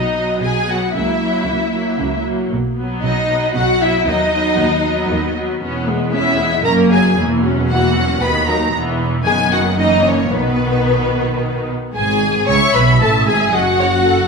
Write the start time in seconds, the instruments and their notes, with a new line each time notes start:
Already playing: double bass section B1, cello section B2, viola section F#3 B3, violin section D#4 D#5
0.15 viola section F#3 B3
0.42 double bass section B1, cello section B2, violin section G#4 G#5
0.68 viola section F#3 B3, violin section F#4 F#5
0.94 double bass section C#2, cello section C#3, viola section F#3 A#3, violin section E4 E5
1.22 viola section F#3 A#3
1.47 double bass section C#2, cello section C#3
1.74 viola section F#3 A#3
1.99 double bass section C#2, cello section C#3
2.26 viola section F#3 A#3
2.51 double bass section B1, cello section B2
2.77 viola section F#3 B3
3.02 double bass section B1, cello section B2, violin section D#4 D#5
3.29 viola section F#3 B3
3.55 double bass section B1, cello section B2, violin section F#4 F#5
3.81 viola section F#3 B3, violin section E4 E5
4.07 double bass section D#2, cello section D#2, viola section F#3 B3, violin section D#4 D#5
4.33 viola section F#3 B3
4.59 cello section D#2, double bass section D#2
4.86 viola section F#3 B3
5.10 double bass section D#2, cello section D#2
5.37 viola section F#3 B3
5.62 double bass section E1, cello section E2, viola section B3 C#4
5.88 viola section G#3 B3
6.13 viola section B3 C#4, violin section E4 E5
6.40 viola section G#3 B3
6.64 double bass section F#1, cello section F#2, viola section A#3 C#4, violin section A#4 A#5
6.91 viola section F#3 A#3, violin section G#4 G#5
7.18 double bass section E1, cello section E2, viola section E3 A#3
7.44 viola section F#3 C#4
7.69 viola section E3 A#3, violin section F#4 F#5
7.96 viola section F#3 C#4
8.21 cello section D#2, double bass section D#2, viola section D#3 B3, violin section B4 B5
8.47 viola section F#3 D#4, violin section A#4 A#5
8.73 double bass section E1, cello section E2, viola section E3 B3
9.25 double bass section F#1, cello section F#2, viola section D#3 B3, violin section G#4 G#5
9.52 violin section F#4 F#5
9.78 viola section E3 A#3, violin section D#4 D#5
10.06 violin section C#4 C#5
10.32 double bass section B1, cello section B2, viola section D#3 B3, violin section B3 B4
11.95 double bass section G#1, cello section G#2, violin section G#4 G#5
12.47 double bass section C#2, cello section C#3, violin section C#5 C#6, viola section E5
12.74 double bass section B1, cello section B2, violin section B4 B5
13.00 double bass section A1, cello section A2, violin section A4 A5
13.27 double bass section G#1, cello section G#2, violin section G#4 G#5
13.52 double bass section F#1, cello section F#2, violin section F#4 F#5, viola section D#5
13.79 viola section C#5
14.06 viola section A4